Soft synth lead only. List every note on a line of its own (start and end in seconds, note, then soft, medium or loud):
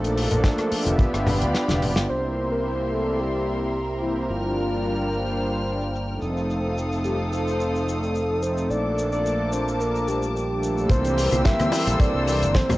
2.09 2.53 C5 loud
2.52 2.92 A#4 loud
2.92 3.21 A4 medium
3.20 4.02 G4 loud
4.02 4.15 E4 medium
4.30 5.36 F4 medium
7.05 7.17 G4 medium
7.33 8.44 A4 loud
8.43 8.72 C5 loud
8.70 9.12 D5 loud
9.12 9.54 D5 loud
9.53 9.82 C5 medium
9.80 10.09 A#4 loud
10.08 10.35 G4 medium
10.35 10.92 G4 loud
10.90 11.45 C5 loud
11.45 11.93 E5 loud
11.93 12.02 E5 medium
12.00 12.57 D5 loud
12.55 12.78 C5 loud